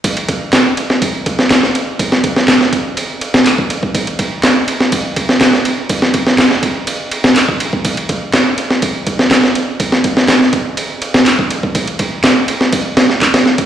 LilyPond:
\new DrumStaff \with { instrumentName = "Drums" } \drummode { \time 4/4 \tempo 4 = 123 <bd cymr>16 cymr16 <bd cymr>8 <hc cymr sn>8 cymr16 sn16 <bd cymr>8 <bd cymr>16 sn16 <hc cymr sn>16 sn16 cymr8 | <bd cymr>16 sn16 <bd cymr>16 sn16 <hc cymr sn>16 sn16 <bd cymr>8 cymr8 cymr16 sn16 <hc cymr>16 bd16 cymr16 bd16 | <bd cymr>16 cymr16 <bd cymr>8 <hc cymr sn>8 cymr16 sn16 <bd cymr>8 <bd cymr>16 sn16 <hc cymr sn>16 sn16 cymr8 | <bd cymr>16 sn16 <bd cymr>16 sn16 <hc cymr sn>16 sn16 <bd cymr>8 cymr8 cymr16 sn16 <hc cymr>16 bd16 cymr16 bd16 |
<bd cymr>16 cymr16 <bd cymr>8 <hc cymr sn>8 cymr16 sn16 <bd cymr>8 <bd cymr>16 sn16 <hc cymr sn>16 sn16 cymr8 | <bd cymr>16 sn16 <bd cymr>16 sn16 <hc cymr sn>16 sn16 <bd cymr>8 cymr8 cymr16 sn16 <hc cymr>16 bd16 cymr16 bd16 | <bd cymr>16 cymr16 <bd cymr>8 <hc cymr sn>8 cymr16 sn16 <bd cymr>8 <cymr sn>16 sn16 <hc bd cymr>16 <cymr sn>16 sn16 <bd cymr>16 | }